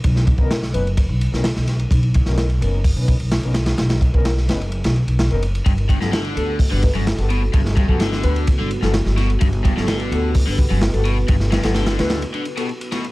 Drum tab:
RD |x-x-x-xxx-x-x-xx|xxx-xxx---xxxxxx|xxx-x-xxxxxxxxxx|xxx-xxx---xxxxx-|
HH |----------------|--------o-------|----------------|--------o-------|
SD |-o--oo-----oooo-|---oo-------o-oo|oo--ooo--o--o---|---oo-------o---|
BD |o-oo----o-------|o-o-----o-o-----|--oo------------|o-o-----o-o-----|

RD |x-x-x-xxx-x-x-xx|xxx-xxx---xxxxx-|x-xxxxxxxxxxxxxx|
HH |----------------|--------o-------|----------------|
SD |-o--oo-----oooo-|---oo-------o---|-ooooooo------o-|
BD |o-oo----o-------|o-o-----o-o-----|o---------------|